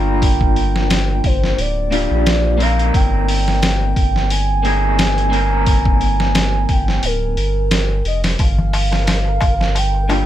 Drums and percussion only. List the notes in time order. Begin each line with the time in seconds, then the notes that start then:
0.22 kick, open hi-hat
0.41 kick
0.56 open hi-hat
0.76 snare
0.90 snare, open hi-hat
1.24 kick, open hi-hat
1.44 snare
1.58 open hi-hat
1.92 open hi-hat
2.26 snare, open hi-hat
2.60 open hi-hat
2.79 closed hi-hat
2.94 kick, open hi-hat
3.29 open hi-hat
3.48 snare
3.62 snare, open hi-hat
3.96 kick, open hi-hat
4.16 snare
4.30 open hi-hat
4.65 open hi-hat
4.99 snare, open hi-hat
5.18 closed hi-hat
5.33 open hi-hat
5.66 kick, open hi-hat
5.85 kick
6.01 open hi-hat
6.20 snare
6.35 snare, open hi-hat
6.69 kick, open hi-hat
6.88 snare
7.03 open hi-hat
7.37 open hi-hat
7.71 snare, open hi-hat
8.05 open hi-hat
8.24 snare, open hi-hat
8.39 kick, open hi-hat, darbuka tek
8.58 darbuka tek, darbuka dum
8.73 open hi-hat, darbuka tek
8.92 snare, darbuka tek
9.07 snare, open hi-hat, darbuka tek
9.25 darbuka tek
9.41 kick, open hi-hat, darbuka tek
9.60 snare, darbuka tek
9.75 open hi-hat, darbuka tek
9.94 darbuka tek
10.10 open hi-hat, darbuka tek